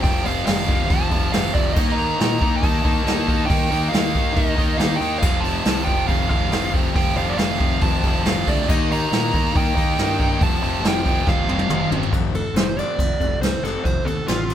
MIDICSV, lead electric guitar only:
0, 0, Header, 1, 2, 480
1, 0, Start_track
1, 0, Tempo, 431655
1, 50, Time_signature, 4, 2, 24, 8
1, 16171, End_track
2, 0, Start_track
2, 0, Title_t, "Lead electric guitar"
2, 0, Program_c, 0, 29
2, 31, Note_on_c, 0, 79, 101
2, 285, Note_off_c, 0, 79, 0
2, 290, Note_on_c, 0, 77, 98
2, 498, Note_off_c, 0, 77, 0
2, 512, Note_on_c, 0, 77, 90
2, 968, Note_off_c, 0, 77, 0
2, 985, Note_on_c, 0, 81, 102
2, 1445, Note_off_c, 0, 81, 0
2, 1470, Note_on_c, 0, 77, 104
2, 1705, Note_off_c, 0, 77, 0
2, 1707, Note_on_c, 0, 74, 94
2, 1923, Note_off_c, 0, 74, 0
2, 1927, Note_on_c, 0, 75, 96
2, 2134, Note_on_c, 0, 82, 113
2, 2199, Note_off_c, 0, 75, 0
2, 2850, Note_off_c, 0, 82, 0
2, 2855, Note_on_c, 0, 81, 110
2, 3844, Note_on_c, 0, 79, 101
2, 3887, Note_off_c, 0, 81, 0
2, 4324, Note_off_c, 0, 79, 0
2, 4329, Note_on_c, 0, 77, 100
2, 4817, Note_on_c, 0, 75, 81
2, 4849, Note_off_c, 0, 77, 0
2, 5308, Note_on_c, 0, 77, 92
2, 5333, Note_off_c, 0, 75, 0
2, 5518, Note_off_c, 0, 77, 0
2, 5523, Note_on_c, 0, 79, 91
2, 5769, Note_off_c, 0, 79, 0
2, 5773, Note_on_c, 0, 77, 95
2, 6007, Note_on_c, 0, 81, 90
2, 6044, Note_off_c, 0, 77, 0
2, 6493, Note_on_c, 0, 79, 81
2, 6529, Note_off_c, 0, 81, 0
2, 6752, Note_off_c, 0, 79, 0
2, 6756, Note_on_c, 0, 77, 84
2, 6992, Note_off_c, 0, 77, 0
2, 7005, Note_on_c, 0, 77, 85
2, 7458, Note_off_c, 0, 77, 0
2, 7737, Note_on_c, 0, 79, 104
2, 7972, Note_off_c, 0, 79, 0
2, 7976, Note_on_c, 0, 77, 99
2, 8109, Note_on_c, 0, 74, 75
2, 8145, Note_off_c, 0, 77, 0
2, 8200, Note_on_c, 0, 77, 95
2, 8203, Note_off_c, 0, 74, 0
2, 8697, Note_on_c, 0, 81, 97
2, 8704, Note_off_c, 0, 77, 0
2, 9191, Note_on_c, 0, 77, 108
2, 9192, Note_off_c, 0, 81, 0
2, 9431, Note_off_c, 0, 77, 0
2, 9441, Note_on_c, 0, 74, 99
2, 9662, Note_off_c, 0, 74, 0
2, 9667, Note_on_c, 0, 75, 99
2, 9885, Note_off_c, 0, 75, 0
2, 9923, Note_on_c, 0, 82, 106
2, 10635, Note_on_c, 0, 79, 96
2, 10650, Note_off_c, 0, 82, 0
2, 11596, Note_on_c, 0, 81, 101
2, 11612, Note_off_c, 0, 79, 0
2, 12078, Note_off_c, 0, 81, 0
2, 12089, Note_on_c, 0, 79, 93
2, 12552, Note_off_c, 0, 79, 0
2, 12557, Note_on_c, 0, 77, 81
2, 13218, Note_off_c, 0, 77, 0
2, 13737, Note_on_c, 0, 69, 104
2, 13966, Note_off_c, 0, 69, 0
2, 13969, Note_on_c, 0, 72, 78
2, 14225, Note_off_c, 0, 72, 0
2, 14225, Note_on_c, 0, 74, 90
2, 14911, Note_off_c, 0, 74, 0
2, 14915, Note_on_c, 0, 72, 90
2, 15154, Note_off_c, 0, 72, 0
2, 15163, Note_on_c, 0, 69, 90
2, 15387, Note_on_c, 0, 72, 89
2, 15398, Note_off_c, 0, 69, 0
2, 15620, Note_on_c, 0, 69, 93
2, 15630, Note_off_c, 0, 72, 0
2, 15866, Note_off_c, 0, 69, 0
2, 15876, Note_on_c, 0, 65, 103
2, 16171, Note_off_c, 0, 65, 0
2, 16171, End_track
0, 0, End_of_file